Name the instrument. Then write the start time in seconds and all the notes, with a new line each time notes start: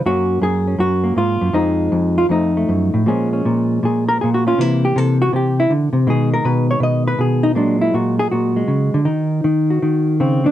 hollow-body jazz guitar
0.06 F#2 F#3 A#3 C#4 F#4
0.42 F#2 G#4
0.68 C#4
0.79 F#2 F#4
1.04 A#3
1.16 G#2 F4
1.41 F#2
1.53 F2 F3 G#3 D#4
1.92 F2
2.18 F4
2.29 F2 F3 A3 D#4
2.57 A3
2.69 F#2
2.94 A2
3.06 A#2 F3 G#3 C#4 G#4
3.33 C#4
3.45 A#2
3.83 A#2 G#4
4.09 A#4
4.21 A#2 G#4
4.34 F#4
4.47 C#4 F4
4.58 C3 E3 A#3 E4
4.85 G4
4.96 C3 A4
5.22 F#4
5.33 C3 G4
5.60 E4
5.70 D3
5.93 C3
6.07 B2 D#3 G#3 G#4
6.34 A#4
6.45 B2 B4
6.71 C#5
6.80 B2 D#5
7.08 B4
7.19 B2 G#4
7.43 D#4
7.55 A#2 F#3 G#3 D4
7.81 E4
7.94 A#2 F#4
8.19 G#4
8.31 A#2 F#4
8.56 G#3
8.68 C#3
8.94 D3
9.05 D#3 D#4
9.44 D#3
9.70 F#4
9.82 D#3
10.20 C#3 C4
10.44 D#3 D4